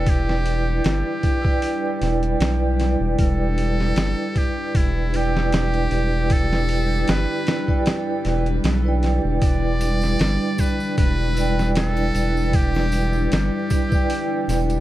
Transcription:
0.00 0.81 E1 loud
0.00 14.80 G3 medium
0.00 14.80 D4 medium
0.00 1.38 E4 medium
0.00 3.19 E4 medium
0.00 0.11 A4 loud
0.00 1.39 B4 medium
0.00 1.40 D5 medium
0.00 1.41 G5 loud
0.06 0.86 G4 loud
0.06 kick loud
0.06 open hi-hat medium
0.29 snare medium
0.46 open hi-hat medium
0.84 1.03 G1 medium
0.84 2.38 G4 medium
0.84 snare loud
0.84 open hi-hat medium
1.23 kick medium
1.23 open hi-hat medium
1.42 5.07 E4 medium
1.42 5.08 B4 medium
1.42 kick medium
1.46 5.09 D5 medium
1.46 5.10 G5 loud
1.62 open hi-hat medium
2.02 2.36 E1 medium
2.02 snare soft
2.02 open hi-hat medium
2.23 closed hi-hat soft
2.40 2.96 B1 medium
2.40 snare loud
2.40 open hi-hat medium
2.80 snare medium
2.80 open hi-hat medium
3.00 3.16 E1 loud
3.18 3.93 E1 loud
3.18 9.42 G4 medium
3.18 4.39 A4 loud
3.18 kick loud
3.18 open hi-hat medium
3.58 open hi-hat medium
3.80 snare soft
3.96 4.15 G1 medium
3.96 snare loud
3.96 open hi-hat medium
4.36 4.78 G4 loud
4.36 kick medium
4.36 open hi-hat medium
4.75 5.88 E1 medium
4.75 5.18 E4 loud
4.75 kick loud
4.75 open hi-hat medium
5.11 7.62 E4 loud
5.11 7.63 B4 medium
5.11 7.64 D5 medium
5.11 open hi-hat medium
5.16 5.54 G4 medium
5.16 7.65 G5 loud
5.37 snare medium
5.53 6.34 G4 loud
5.53 snare loud
5.53 open hi-hat medium
5.74 closed hi-hat soft
5.91 7.05 E1 medium
5.91 open hi-hat medium
6.30 7.12 A4 loud
6.30 kick loud
6.30 open hi-hat medium
6.53 snare medium
6.69 open hi-hat medium
7.08 7.27 G1 medium
7.08 7.87 B4 loud
7.08 snare loud
7.08 open hi-hat medium
7.47 snare loud
7.47 open hi-hat medium
7.67 8.21 E4 loud
7.67 8.21 B4 medium
7.67 8.22 D5 medium
7.67 8.22 G5 loud
7.67 kick medium
7.86 snare loud
7.86 open hi-hat medium
8.24 8.60 E1 loud
8.24 8.43 E4 medium
8.24 8.44 B4 medium
8.24 8.44 D5 medium
8.24 8.45 G5 medium
8.24 snare soft
8.24 open hi-hat medium
8.46 closed hi-hat soft
8.64 9.20 B1 loud
8.64 snare loud
8.64 open hi-hat medium
8.82 11.31 E4 medium
8.82 11.32 B4 medium
8.82 11.33 D5 medium
8.88 11.34 G5 medium
9.03 snare medium
9.03 open hi-hat medium
9.24 9.40 E1 loud
9.42 10.16 E1 medium
9.42 14.80 E4 medium
9.42 10.62 D5 loud
9.42 kick loud
9.42 open hi-hat medium
9.42 tambourine soft
9.81 open hi-hat medium
9.81 tambourine medium
10.01 snare soft
10.01 tambourine medium
10.19 10.38 G1 medium
10.19 snare loud
10.19 open hi-hat medium
10.19 tambourine soft
10.58 10.98 B4 loud
10.58 kick medium
10.58 open hi-hat medium
10.58 tambourine medium
10.80 tambourine soft
10.97 12.11 E1 medium
10.97 11.72 B4 loud
10.97 kick loud
10.97 open hi-hat medium
10.97 tambourine soft
11.34 13.85 E4 medium
11.34 13.86 B4 medium
11.34 13.87 D5 medium
11.34 open hi-hat medium
11.34 tambourine medium
11.40 13.88 G5 loud
11.59 snare medium
11.59 tambourine soft
11.75 12.57 A4 loud
11.75 snare loud
11.75 open hi-hat medium
11.75 tambourine soft
11.97 closed hi-hat soft
11.97 triangle medium
12.14 13.28 E1 medium
12.14 open hi-hat medium
12.14 tambourine medium
12.37 tambourine soft
12.53 13.32 G4 loud
12.53 kick loud
12.53 open hi-hat medium
12.53 tambourine soft
12.75 snare medium
12.75 triangle medium
12.92 open hi-hat medium
12.92 tambourine medium
13.13 tambourine soft
13.32 13.50 G1 medium
13.32 14.80 G4 medium
13.32 snare loud
13.32 open hi-hat medium
13.32 tambourine soft
13.70 kick medium
13.70 open hi-hat medium
13.70 tambourine loud
13.89 14.80 E4 loud
13.89 14.80 B4 medium
13.89 14.80 D5 medium
13.89 kick loud
13.89 tambourine medium
13.95 14.80 G5 loud
14.10 open hi-hat medium
14.10 tambourine soft
14.48 14.80 E1 loud
14.48 snare soft
14.48 open hi-hat medium
14.48 tambourine medium
14.48 triangle medium
14.70 closed hi-hat soft
14.70 tambourine soft

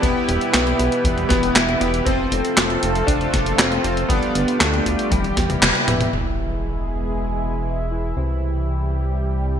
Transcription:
0.00 0.13 E1 medium
0.00 2.05 B2 medium
0.00 2.05 E3 medium
0.00 2.03 G3 medium
0.00 0.51 B3 loud
0.00 2.03 E4 medium
0.00 1.78 E4 loud
0.00 0.24 E4 medium
0.00 2.03 G4 medium
0.00 1.78 G4 medium
0.00 1.78 B4 loud
0.00 kick loud
0.00 closed hi-hat medium
0.29 0.39 E1 loud
0.29 0.50 G4 medium
0.29 closed hi-hat medium
0.41 closed hi-hat medium
0.53 0.74 B1 medium
0.53 1.27 B3 loud
0.53 0.78 E4 medium
0.53 snare loud
0.53 clap loud
0.53 closed hi-hat medium
0.67 closed hi-hat soft
0.79 0.89 B1 loud
0.79 1.04 B3 medium
0.79 closed hi-hat medium
0.92 closed hi-hat medium
1.04 1.25 E1 loud
1.04 1.29 G3 medium
1.04 kick loud
1.04 closed hi-hat medium
1.18 closed hi-hat soft
1.29 1.51 E1 loud
1.29 1.78 B3 loud
1.29 1.54 B3 medium
1.29 kick loud
1.29 snare medium
1.29 closed hi-hat medium
1.43 closed hi-hat medium
1.56 1.76 E1 loud
1.56 1.80 E4 loud
1.56 snare loud
1.56 clap loud
1.56 closed hi-hat medium
1.69 closed hi-hat soft
1.80 2.01 E1 medium
1.80 2.07 B3 medium
1.80 2.04 E4 medium
1.80 2.04 G4 medium
1.80 2.02 G4 medium
1.80 2.04 B4 loud
1.80 closed hi-hat medium
1.94 closed hi-hat soft
2.05 2.27 F1 loud
2.05 4.08 C3 medium
2.05 4.08 F3 medium
2.05 4.08 A3 medium
2.05 3.11 C4 loud
2.05 3.81 F4 medium
2.05 2.19 F4 loud
2.05 5.09 F4 medium
2.05 3.81 A4 medium
2.05 4.08 A4 loud
2.05 3.81 C5 loud
2.05 kick loud
2.05 closed hi-hat medium
2.32 2.42 F1 loud
2.32 2.56 C4 medium
2.32 closed hi-hat medium
2.45 closed hi-hat medium
2.57 2.77 F1 loud
2.57 2.70 A3 medium
2.57 snare loud
2.57 clap loud
2.57 closed hi-hat medium
2.70 closed hi-hat soft
2.83 3.03 F1 loud
2.83 3.04 C4 medium
2.83 closed hi-hat medium
2.95 closed hi-hat medium
3.07 3.28 F1 medium
3.07 3.60 D4 loud
3.07 3.29 F4 medium
3.07 kick loud
3.07 closed hi-hat medium
3.21 closed hi-hat soft
3.34 3.54 F1 medium
3.34 3.55 A4 medium
3.34 kick loud
3.34 snare medium
3.34 closed hi-hat medium
3.46 closed hi-hat medium
3.58 3.79 F1 loud
3.58 4.00 C4 medium
3.58 3.83 F4 medium
3.58 snare loud
3.58 clap loud
3.58 closed hi-hat medium
3.72 closed hi-hat soft
3.84 4.05 F1 medium
3.84 4.09 C4 medium
3.84 4.07 F4 medium
3.84 4.07 A4 medium
3.84 4.07 C5 medium
3.84 closed hi-hat medium
3.97 closed hi-hat medium
4.02 4.09 C4 medium
4.09 4.20 G1 medium
4.09 5.11 D3 medium
4.09 5.11 G3 medium
4.09 4.34 G3 medium
4.09 4.56 B3 medium
4.09 5.10 B3 medium
4.09 5.11 B3 medium
4.09 5.10 D4 medium
4.09 5.10 F4 medium
4.09 5.10 G4 medium
4.09 6.11 G4 medium
4.09 5.10 D5 loud
4.09 kick loud
4.09 closed hi-hat medium
4.23 closed hi-hat soft
4.35 4.45 G1 loud
4.35 4.60 B3 medium
4.35 closed hi-hat medium
4.48 closed hi-hat medium
4.59 4.81 D2 medium
4.59 5.12 A3 medium
4.59 4.85 D4 loud
4.59 snare loud
4.59 clap loud
4.59 closed hi-hat medium
4.74 closed hi-hat soft
4.86 4.96 D2 medium
4.86 5.07 F4 medium
4.86 kick medium
4.86 closed hi-hat medium
4.99 closed hi-hat medium
5.10 5.32 E1 loud
5.10 6.12 B2 medium
5.10 6.12 E3 medium
5.10 5.83 G3 medium
5.10 6.12 G3 medium
5.10 5.24 E4 loud
5.10 6.12 E4 medium
5.10 kick loud
5.10 closed hi-hat medium
5.10 high tom medium
5.24 closed hi-hat soft
5.24 high tom medium
5.37 5.57 E1 loud
5.37 5.61 B3 medium
5.37 kick loud
5.37 snare medium
5.37 closed hi-hat medium
5.50 closed hi-hat medium
5.50 mid tom medium
5.62 5.72 E1 medium
5.62 5.75 G3 medium
5.62 snare loud
5.62 clap loud
5.62 closed hi-hat medium
5.62 mid tom medium
5.75 closed hi-hat soft
5.88 6.08 E1 loud
5.88 6.09 B3 medium
5.88 6.10 E4 medium
5.88 6.10 G4 medium
5.88 6.10 B4 loud
5.88 closed hi-hat medium
5.88 mid tom loud
6.01 closed hi-hat medium
6.01 mid tom medium
6.13 8.14 E1 medium
6.13 8.15 B2 medium
6.13 9.60 E3 medium
6.13 8.15 G#3 medium
6.13 7.88 E4 medium
6.13 9.60 E4 medium
6.13 7.88 G#4 medium
6.13 8.15 G#4 medium
6.13 7.88 B4 loud
6.13 impact medium
7.91 8.14 E4 medium
7.91 8.14 G#4 medium
7.91 8.14 B4 medium
8.17 9.60 C2 medium
8.17 9.60 C3 medium
8.17 9.60 G3 medium
8.17 9.60 E4 medium
8.17 9.60 G4 medium
8.17 9.60 C5 loud

